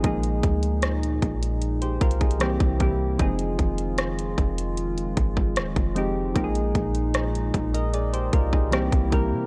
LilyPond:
<<
  \new Staff \with { instrumentName = "Synth keys" } { \time 4/4 \key f \minor \tempo 4 = 76 << { r2 r16 <g' c''>16 <f' bes'>16 <ees' aes'>8 r8. | r1 | r4. r16 <bes' ees''>16 <aes' d''>16 <g' c''>16 <f' bes'>16 <ees' aes'>8 r8. | } \\ { <f aes bes ees' aes'>4. r4. <e g bes c' g'>8 <e g bes c' g'>8 | <f aes c' ees' aes'>4. r2 <f aes c' ees' g'>8 | <f aes bes ees' g' aes'>4. r4. <e g bes c' g'>8 <e g bes c' bes'>8 | } >> }
  \new Staff \with { instrumentName = "Analog synth pad" } { \time 4/4 \key f \minor << { <bes, ees'>2. <c e'>4 | <ees f'>1 | <bes, ees'>2. <c e'>4 | } \\ { aes2. bes4 | aes1~ | aes2. bes4 | } >> }
  \new Staff \with { instrumentName = "808-style bass" } { \clef bass \time 4/4 \key f \minor bes,,8 d,4 bes,,4 c,8. c,8. | f,,8 f,,4 f,,4 aes,,8 ees,,16 f,,8. | bes,,8 bes,,4 bes,,4 c,8. c,8 c16 | }
  \new DrumStaff \with { instrumentName = "Drums" } \drummode { \time 4/4 <hh bd>16 hh16 <hh bd>16 hh16 <hh ss>16 hh16 <hh bd>16 hh16 hh16 hh16 <hh bd>32 hh32 <hh bd>32 hh32 <hh ss>16 <hh bd>16 <hh bd>8 | <hh bd>16 hh16 <hh bd>16 hh16 <hh ss>16 hh16 <hh bd>16 hh16 hh16 hh16 <hh bd>16 bd16 <hh ss>16 <hh bd>16 hh8 | <hh bd>16 hh16 <hh bd>16 hh16 <hh ss>16 hh16 <hh bd>16 hh16 hh16 hh16 <hh bd>16 bd16 <hh ss>16 <hh bd>16 <hh bd>8 | }
>>